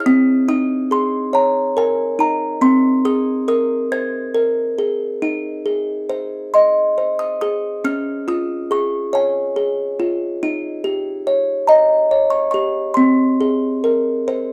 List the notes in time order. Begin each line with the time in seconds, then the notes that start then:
0.00 F6
0.06 C4 D#6
0.48 D#4 D#6
0.91 G#4 C6
1.33 C#5 A#5
1.77 A#4 G#5
2.19 D#4 A#5
2.61 C4 C6
3.05 G#4 D#6
3.48 A#4 D#6
3.92 C5 G#6
4.34 A#4
4.78 G#4
5.22 D#4
5.66 G#4
6.09 C5
6.54 D#5 C6
6.98 C5
7.19 D#6
7.41 G#4 D#6
7.84 C#4 F6
8.28 F4 D#6
8.71 G#4 C#6
9.13 C#5 G#5
9.56 G#4
10.00 F4
10.43 D#4
10.84 G4
11.27 C#5
11.67 D#5 A#5
12.11 C#5
12.30 C#6
12.51 G4 C#6
12.94 C4 C6
13.41 G#4
13.84 A#4
14.28 C5